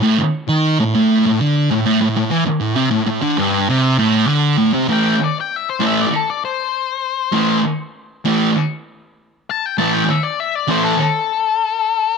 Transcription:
<<
  \new Staff \with { instrumentName = "Lead electric guitar" } { \time 4/4 \key a \minor \tempo 4 = 98 r1 | r1 | g''8 d''16 g''16 e''16 c''16 e''16 d''16 a'16 d''16 c''4.~ | c''8 r2. a''16 g''16 |
a''16 g''16 e''16 d''16 e''16 d''16 c''16 a'16 a'2 | }
  \new Staff \with { instrumentName = "Distorted electric guitar" } { \clef bass \time 4/4 \key a \minor a,16 r8 dis8 a,16 a,8 a,16 d8 a,16 a,16 a,16 a,16 e16 | r16 a,16 c16 a,16 a,16 d16 g,8 c8 a,8 d8 a,16 c16 | <a, e a>8 r4 <a, e a>8 r2 | <a, e a>8 r4 <a, e a>8 r2 |
<a, e a>8 r4 <a, e a>8 r2 | }
>>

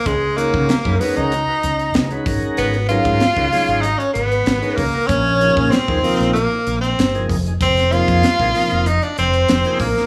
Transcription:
<<
  \new Staff \with { instrumentName = "Flute" } { \time 4/4 \key aes \lydian \tempo 4 = 95 aes'8 bes'4 ces''16 ees''4.~ ees''16 r8 | ces''8 f''4. ees''16 des''16 ces''4 bes'8 | des''4 c''4 bes'8. c''8. r8 | c''8 f''4. ees''16 d''16 c''4 bes'8 | }
  \new Staff \with { instrumentName = "Tonewheel organ" } { \time 4/4 \key aes \lydian r8 <ees aes des' ges' des''>8 r16 <ees aes des' ges' ces''>16 <ees aes des' ges' bes'>8 r16 <ges' ces''>16 r8. <ees aes des' ges' ces''>16 <ees aes des' ges' bes'>8~ | <ees aes des' ges' bes'>16 r16 <ees ges aes des' bes'>8 r16 <ees aes des' ges' bes'>16 <ees ges aes des' aes'>8 r16 <ges' bes'>16 r8. <ees aes des' ges' bes'>16 r16 <ges' bes'>16 | r8 <des f bes ees' aes'>8 r16 <c f bes ees' aes'>16 <c f bes ees' f'>8 r16 <ees' f'>16 r8. <c f bes ees' aes'>16 r16 <ees' aes'>16 | r8 <c f bes ees' aes'>8 r16 <c f bes ees' aes'>16 <c f bes ees' f'>8 r16 <ees' f'>16 r8. <c f bes ees' aes'>16 r16 <ees' f'>16 | }
  \new Staff \with { instrumentName = "Tenor saxophone" } { \time 4/4 \key aes \lydian aes8 bes4 ces'16 ees'4.~ ees'16 r8 | ces'8 f'4. ees'16 des'16 ces'4 bes8 | des'4 c'4 bes8. c'8. r8 | c'8 f'4. ees'16 d'16 c'4 bes8 | }
  \new Staff \with { instrumentName = "Fretless electric bass" } { \clef bass \time 4/4 \key aes \lydian des,8. des16 r16 ges,16 r16 des,8 r16 des,8 des,16 r16 aes,,16 r16 | aes,,8. aes,16 r16 des,16 r16 aes,,8 r16 aes,,8 aes,,16 r16 des,16 r16 | bes,,8. bes,16 r16 ees,16 r16 bes,,8 r16 bes,,8 g,,8 f,,8 | f,,8. f,16 r16 bes,,16 r16 f,,8 r16 f,,8 f,,16 r16 bes,,16 r16 | }
  \new DrumStaff \with { instrumentName = "Drums" } \drummode { \time 4/4 <hh bd>8 hh16 bd16 <hh sn>16 bd16 <hho sn>16 hh16 hh8 hh16 hh16 <hh sn>16 hh16 <hho bd>16 hh16 | hh16 hh16 hh16 <hh bd>16 <hh sn>16 bd16 <hho sn>16 hh16 hh16 hh16 hh16 hh16 <hh sn>16 hh16 <hho bd>8 | <hh bd>8 hh16 bd16 <hh sn>16 bd16 hho16 <hh sn>16 hh8 hh16 hh16 <hh sn>16 hh16 <hho bd>16 hh16 | <hh bd>16 <hh sn>16 hh16 <hh bd>16 <hh sn>16 bd16 <hho sn>16 hh16 hh16 hh16 hh16 hh16 <hh sn>16 hh16 <hho bd>16 sn16 | }
>>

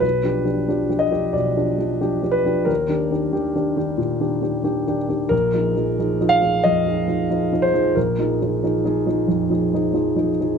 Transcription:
\new Staff \with { instrumentName = "Grand piano" } { \time 4/4 \key bes \mixolydian \tempo 4 = 90 << { b'4. ees''8 d''4. b'8 | bes'2.~ bes'8 r8 | bes'4. f''8 ees''4. c''8 | bes'2.~ bes'8 r8 | } \\ { \tuplet 3/2 { b,,8 <f d' g'>8 <f d' g'>8 <f d' g'>8 <f d' g'>8 <f d' g'>8 b,,8 <f d' g'>8 <f d' g'>8 <f d' g'>8 <f d' g'>8 <f d' g'>8 } | \tuplet 3/2 { ees,8 <ees d' g'>8 <ees d' g'>8 <ees d' g'>8 <ees d' g'>8 <ees d' g'>8 bes,8 <ees d' g'>8 <ees d' g'>8 <ees d' g'>8 <ees d' g'>8 <ees d' g'>8 } | \tuplet 3/2 { bes,,8 <f ees' aes'>8 <f ees' aes'>8 <f ees' aes'>8 <f ees' aes'>8 <f ees' aes'>8 f,8 <f ees' aes'>8 <f ees' aes'>8 <f ees' aes'>8 <f ees' aes'>8 <f ees' aes'>8 } | \tuplet 3/2 { bes,,8 <f ees' aes'>8 <f ees' aes'>8 <f ees' aes'>8 <f ees' aes'>8 <f ees' aes'>8 f,8 <f ees' aes'>8 <f ees' aes'>8 <f ees' aes'>8 <f ees' aes'>8 <f ees' aes'>8 } | } >> }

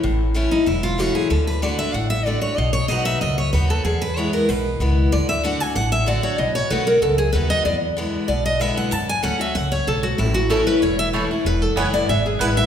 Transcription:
<<
  \new Staff \with { instrumentName = "Steel-string acoustic guitar" } { \time 4/4 \key a \major \tempo 4 = 189 r4. dis'8 e'8 f'8 fis'8 gis'8 | a'8 b'8 d''8 e''8 fis''8 e''8 d''8 cis''8 | dis''8 cis''8 dis''8 e''8 dis''8 cis''8 b'8 a'8 | gis'8 b'8 cis''8 bes'8 b'4 r4 |
d''8 e''8 fis''8 gis''8 fis''8 e''8 d''8 cis''8 | dis''8 cis''8 b'8 bes'8 a'8 gis'8 b'8 dis''8 | d''8 r4. d''8 dis''8 e''8 fis''8 | a''8 gis''8 fis''8 e''8 fis''8 cis''8 a'8 fis'8 |
e'8 fis'8 a'8 b'8 cis''8 e''8 r4 | b'8 a'8 cis''8 d''8 e''8 gis'8 b'8 e''8 | }
  \new Staff \with { instrumentName = "Mandolin" } { \time 4/4 \key a \major r1 | r1 | r1 | r1 |
r1 | r1 | r1 | r1 |
r4 <a e' cis'' a''>8 r4. <a e' cis'' a''>8 r8 | r4 <b e' b' gis''>8 r4. <b e' b' gis''>8 r8 | }
  \new Staff \with { instrumentName = "Steel-string acoustic guitar" } { \time 4/4 \key a \major << { r4 <e a cis' e'>8 <cis' e'>8 r4 <e a cis' e'>4 | r4 <d a d' fis'>4 r4 <d a d' fis'>4 | r4 <fis b dis' fis'>4 r4 <fis b dis' fis'>4 | r4 <e gis b e'>4 r4 <e gis b e'>4 |
r4 <d a d' fis'>8 <d' fis'>8 r4 <d a d' fis'>8 <d' fis'>8 | r4 <dis a b fis'>8 <b fis'>8 r4 <dis a b fis'>4 | r4 <d gis b e'>4 r4 <d gis b e'>4 | r4 <fis a cis' fis'>8 <cis' fis'>8 r2 |
r4 <e a cis' e'>4 r4 <e a cis' e'>8 <cis' e'>8 | r4 <e gis b e'>8 <b e'>8 r4 <e gis b e'>4 | } \\ { a,2 e,2 | d2 a,2 | b,2 fis,2 | e,2 b,2 |
d2 a,2 | b,2 fis,2 | e,2 b,2 | fis,2 fis,4 gis,4 |
a,2 e,2 | e,2 b,2 | } >> }
  \new Staff \with { instrumentName = "Upright bass" } { \clef bass \time 4/4 \key a \major a,,2 e,,2 | d,2 a,,2 | b,,4 b,,4 cis,4 dis,4 | e,2 b,,4 cis,4 |
d,2 a,,2 | b,,4 b,,4 cis,4 dis,4 | e,2 b,,2 | fis,4 d,4 cis,4 b,,4 |
a,,2 e,,2 | e,,4 fis,,4 gis,,4 a,,4 | }
>>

